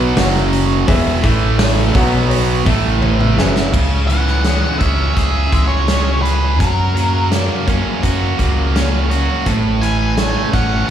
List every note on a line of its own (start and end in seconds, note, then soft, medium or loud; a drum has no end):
0.00 0.13 B1 medium
0.00 0.15 B2 medium
0.00 0.15 F#3 loud
0.00 0.16 B3 loud
0.16 0.84 F#1 medium
0.16 0.87 F#2 medium
0.16 0.87 C#3 medium
0.16 0.87 F#3 loud
0.16 0.74 F#4 medium
0.16 0.74 C#5 medium
0.16 0.75 F#5 medium
0.16 snare loud
0.16 open hi-hat medium
0.16 cowbell medium
0.35 snare soft
0.53 open hi-hat medium
0.87 1.21 E1 medium
0.87 1.22 E2 medium
0.87 1.22 B2 medium
0.87 1.22 E3 medium
0.87 1.23 G#4 loud
0.87 1.24 B4 medium
0.87 1.23 E5 loud
0.87 kick loud
0.87 open hi-hat medium
0.87 cowbell medium
1.23 1.91 A1 medium
1.23 1.94 A2 medium
1.23 1.94 E3 medium
1.23 1.94 A3 loud
1.23 1.80 E4 medium
1.23 1.81 A4 medium
1.23 1.81 E5 medium
1.23 kick medium
1.23 open hi-hat medium
1.58 snare loud
1.58 open hi-hat medium
1.58 cowbell medium
1.94 2.62 B1 medium
1.94 2.65 B2 medium
1.94 2.65 F#3 medium
1.94 2.65 B3 medium
1.94 2.52 F#4 medium
1.94 2.52 B4 medium
1.94 2.53 F#5 medium
1.94 kick loud
1.94 open hi-hat medium
2.30 open hi-hat medium
2.30 cowbell medium
2.65 3.34 A1 medium
2.65 3.36 A2 medium
2.65 3.36 E3 loud
2.65 3.37 A3 medium
2.65 3.23 E4 medium
2.65 3.24 A4 medium
2.65 3.24 E5 medium
2.65 kick loud
2.65 open hi-hat medium
3.02 high tom medium
3.02 cowbell medium
3.20 mid tom medium
3.37 3.71 F#1 medium
3.37 3.72 F#2 medium
3.37 3.72 C#3 medium
3.37 3.72 F#3 medium
3.37 3.66 G#4 medium
3.37 3.67 B4 medium
3.37 3.67 E5 medium
3.37 snare medium
3.56 snare medium
3.73 4.61 C#2 medium
3.73 5.52 C#3 medium
3.73 kick medium
3.73 crash medium
4.07 4.44 E3 medium
4.07 4.78 F#5 medium
4.07 closed hi-hat soft
4.28 snare soft
4.44 5.51 E3 medium
4.44 5.51 G#3 medium
4.44 snare medium
4.44 closed hi-hat medium
4.78 5.10 C#2 medium
4.78 5.87 G#3 medium
4.78 5.88 C#4 medium
4.78 5.13 E5 medium
4.78 kick medium
4.78 closed hi-hat medium
5.14 5.46 C#2 medium
5.14 6.24 C#4 medium
5.14 6.22 G#4 medium
5.14 5.65 E5 medium
5.14 kick medium
5.14 closed hi-hat medium
5.52 6.60 C#2 medium
5.52 6.59 E3 medium
5.52 6.60 G#3 medium
5.52 kick medium
5.52 closed hi-hat medium
5.68 6.19 C#5 medium
5.88 6.60 G#3 medium
5.88 7.66 C#4 medium
5.88 snare medium
5.88 closed hi-hat medium
6.22 8.03 C#4 medium
6.22 6.59 G#4 medium
6.22 6.60 B4 medium
6.22 closed hi-hat medium
6.59 7.48 F#2 medium
6.59 7.30 F#3 medium
6.59 7.27 A#4 medium
6.59 kick loud
6.59 closed hi-hat medium
6.95 8.74 F#3 medium
6.95 7.66 A#3 medium
6.95 closed hi-hat soft
7.32 8.38 F#3 medium
7.32 8.37 A#3 medium
7.32 snare medium
7.32 closed hi-hat medium
7.67 7.82 F#2 medium
7.67 8.74 A#3 medium
7.67 8.72 C#4 medium
7.67 kick medium
7.67 closed hi-hat medium
8.03 8.32 F#2 medium
8.03 9.09 C#4 medium
8.03 9.09 F#4 medium
8.03 kick medium
8.03 closed hi-hat medium
8.38 9.27 C#2 medium
8.38 9.46 F#3 medium
8.38 9.46 A#3 medium
8.38 kick medium
8.38 closed hi-hat medium
8.74 9.46 A#3 medium
8.74 9.45 C#4 medium
8.74 snare medium
8.74 closed hi-hat medium
9.10 9.46 C#4 medium
9.10 9.46 F#4 medium
9.10 closed hi-hat medium
9.46 10.34 A1 loud
9.46 10.90 A2 medium
9.46 kick medium
9.46 closed hi-hat medium
9.82 10.16 E3 medium
9.82 10.49 G#5 medium
9.82 closed hi-hat medium
10.17 10.90 E3 medium
10.17 10.90 A3 medium
10.17 snare loud
10.17 closed hi-hat medium
10.52 10.82 A1 medium
10.52 10.90 A3 medium
10.52 10.90 C#4 medium
10.52 10.87 F#5 medium
10.52 kick medium
10.52 closed hi-hat soft